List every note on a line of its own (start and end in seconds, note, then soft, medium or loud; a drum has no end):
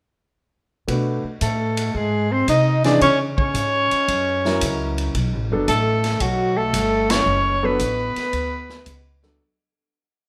0.88 1.22 B2 medium
0.88 1.21 A3 medium
0.88 1.21 D4 soft
0.88 1.22 F#4 soft
0.88 1.22 B4 medium
0.88 kick soft
0.88 ride medium
1.24 muted upright bass stroke soft
1.41 1.94 A2 medium
1.41 1.96 A3 medium
1.41 1.98 A4 medium
1.41 kick soft
1.41 hi-hat pedal soft
1.41 ride medium
1.77 ride medium
1.94 2.47 G#2 medium
1.94 2.33 G#3 medium
1.94 2.34 G#4 medium
1.94 kick soft
2.31 2.48 C4 medium
2.31 2.49 C5 medium
2.48 3.00 C3 medium
2.48 2.83 D#4 medium
2.48 2.83 D#5 medium
2.48 kick soft
2.48 hi-hat pedal soft
2.48 ride medium
2.84 3.00 E3 medium
2.84 3.00 C#4 medium
2.84 3.01 D4 medium
2.84 3.00 D#4 medium
2.84 3.00 G#4 medium
2.84 3.01 D5 medium
2.84 snare soft
2.84 ride soft
3.01 3.54 C#3 medium
3.01 3.19 C#4 medium
3.01 3.18 C#5 medium
3.01 kick soft
3.01 ride medium
3.38 4.95 C#4 medium
3.38 4.94 C#5 loud
3.38 kick medium
3.54 3.89 G#2 medium
3.54 kick soft
3.54 hi-hat pedal soft
3.54 ride medium
3.91 muted upright bass stroke soft
3.91 ride soft
4.08 4.60 F#2 medium
4.08 kick soft
4.08 ride medium
4.45 5.12 F#3 medium
4.45 5.12 C#4 medium
4.45 5.12 E4 medium
4.45 5.12 A#4 medium
4.45 snare soft
4.61 5.13 C#2 medium
4.61 kick soft
4.61 hi-hat pedal medium
4.61 ride medium
4.98 ride soft
5.15 5.32 B1 medium
5.15 kick soft
5.15 ride medium
5.32 5.49 A1 medium
5.50 5.67 F#1 medium
5.50 5.67 F#3 medium
5.50 5.67 B3 medium
5.50 5.67 D4 medium
5.50 5.67 A4 medium
5.68 6.19 A1 medium
5.68 6.22 A3 medium
5.68 6.23 A4 medium
5.68 kick soft
5.68 hi-hat pedal soft
5.68 ride medium
6.04 snare soft
6.04 ride soft
6.20 6.72 B1 medium
6.20 6.59 F#3 medium
6.20 6.58 F#4 medium
6.20 kick soft
6.20 ride medium
6.57 7.12 A3 medium
6.57 7.12 A4 medium
6.73 7.25 G1 medium
6.73 kick soft
6.73 hi-hat pedal soft
6.73 ride medium
7.10 7.66 C#4 medium
7.10 7.67 C#5 loud
7.10 snare medium
7.10 ride medium
7.26 7.78 F#1 medium
7.63 7.79 F#3 medium
7.63 7.79 B3 medium
7.63 9.24 B3 medium
7.63 7.79 D4 medium
7.63 7.79 A4 medium
7.63 9.24 B4 loud
7.79 8.14 A1 medium
7.79 kick soft
7.79 hi-hat pedal soft
7.79 ride medium
8.16 muted upright bass stroke soft
8.16 snare soft
8.16 ride soft
8.33 8.85 D2 medium
8.33 kick soft
8.33 ride medium
8.69 snare soft
8.86 9.39 C#2 medium
8.86 kick soft
8.86 hi-hat pedal medium
8.86 ride medium
9.22 9.41 F#3 medium
9.22 9.41 B3 medium
9.22 9.41 D4 medium
9.22 9.41 A4 medium
9.22 snare soft